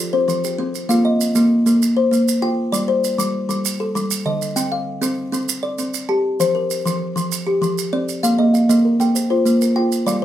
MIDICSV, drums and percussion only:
0, 0, Header, 1, 2, 480
1, 0, Start_track
1, 0, Key_signature, -2, "major"
1, 0, Tempo, 305810
1, 1414, Time_signature, 12, 3, 24, 8
1, 16084, End_track
2, 0, Start_track
2, 0, Title_t, "Drums"
2, 457, Note_on_c, 9, 70, 57
2, 614, Note_off_c, 9, 70, 0
2, 695, Note_on_c, 9, 70, 70
2, 852, Note_off_c, 9, 70, 0
2, 1175, Note_on_c, 9, 70, 50
2, 1332, Note_off_c, 9, 70, 0
2, 1414, Note_on_c, 9, 70, 82
2, 1571, Note_off_c, 9, 70, 0
2, 1894, Note_on_c, 9, 70, 68
2, 2051, Note_off_c, 9, 70, 0
2, 2124, Note_on_c, 9, 70, 88
2, 2281, Note_off_c, 9, 70, 0
2, 2617, Note_on_c, 9, 70, 61
2, 2773, Note_off_c, 9, 70, 0
2, 2860, Note_on_c, 9, 70, 81
2, 3017, Note_off_c, 9, 70, 0
2, 3344, Note_on_c, 9, 70, 54
2, 3501, Note_off_c, 9, 70, 0
2, 3581, Note_on_c, 9, 70, 77
2, 3738, Note_off_c, 9, 70, 0
2, 4297, Note_on_c, 9, 70, 70
2, 4454, Note_off_c, 9, 70, 0
2, 4773, Note_on_c, 9, 70, 64
2, 4930, Note_off_c, 9, 70, 0
2, 5013, Note_on_c, 9, 70, 81
2, 5170, Note_off_c, 9, 70, 0
2, 5494, Note_on_c, 9, 70, 62
2, 5651, Note_off_c, 9, 70, 0
2, 5731, Note_on_c, 9, 70, 93
2, 5888, Note_off_c, 9, 70, 0
2, 6219, Note_on_c, 9, 70, 60
2, 6376, Note_off_c, 9, 70, 0
2, 6446, Note_on_c, 9, 70, 87
2, 6603, Note_off_c, 9, 70, 0
2, 6933, Note_on_c, 9, 70, 64
2, 7090, Note_off_c, 9, 70, 0
2, 7167, Note_on_c, 9, 70, 90
2, 7324, Note_off_c, 9, 70, 0
2, 7887, Note_on_c, 9, 70, 92
2, 8044, Note_off_c, 9, 70, 0
2, 8373, Note_on_c, 9, 70, 66
2, 8530, Note_off_c, 9, 70, 0
2, 8612, Note_on_c, 9, 70, 98
2, 8769, Note_off_c, 9, 70, 0
2, 9081, Note_on_c, 9, 70, 57
2, 9238, Note_off_c, 9, 70, 0
2, 9321, Note_on_c, 9, 70, 85
2, 9478, Note_off_c, 9, 70, 0
2, 10049, Note_on_c, 9, 70, 84
2, 10206, Note_off_c, 9, 70, 0
2, 10526, Note_on_c, 9, 70, 68
2, 10683, Note_off_c, 9, 70, 0
2, 10779, Note_on_c, 9, 70, 86
2, 10936, Note_off_c, 9, 70, 0
2, 11259, Note_on_c, 9, 70, 59
2, 11416, Note_off_c, 9, 70, 0
2, 11486, Note_on_c, 9, 70, 79
2, 11643, Note_off_c, 9, 70, 0
2, 11977, Note_on_c, 9, 70, 48
2, 12133, Note_off_c, 9, 70, 0
2, 12214, Note_on_c, 9, 70, 69
2, 12371, Note_off_c, 9, 70, 0
2, 12693, Note_on_c, 9, 70, 49
2, 12850, Note_off_c, 9, 70, 0
2, 12933, Note_on_c, 9, 70, 66
2, 13090, Note_off_c, 9, 70, 0
2, 13412, Note_on_c, 9, 70, 56
2, 13569, Note_off_c, 9, 70, 0
2, 13655, Note_on_c, 9, 70, 72
2, 13812, Note_off_c, 9, 70, 0
2, 14134, Note_on_c, 9, 70, 51
2, 14291, Note_off_c, 9, 70, 0
2, 14372, Note_on_c, 9, 70, 77
2, 14529, Note_off_c, 9, 70, 0
2, 14851, Note_on_c, 9, 70, 52
2, 15008, Note_off_c, 9, 70, 0
2, 15092, Note_on_c, 9, 70, 69
2, 15249, Note_off_c, 9, 70, 0
2, 15570, Note_on_c, 9, 70, 58
2, 15727, Note_off_c, 9, 70, 0
2, 15813, Note_on_c, 9, 70, 80
2, 15970, Note_off_c, 9, 70, 0
2, 16084, End_track
0, 0, End_of_file